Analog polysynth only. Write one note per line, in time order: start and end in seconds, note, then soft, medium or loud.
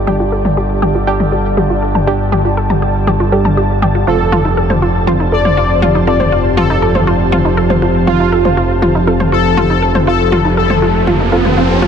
4.07 4.73 A4 medium
5.32 5.98 D5 medium
6.07 6.53 D5 medium
6.57 7.03 A4 medium
8.07 8.73 F4 loud
9.32 9.98 A4 loud
10.07 10.53 A4 medium
10.57 11.03 A4 medium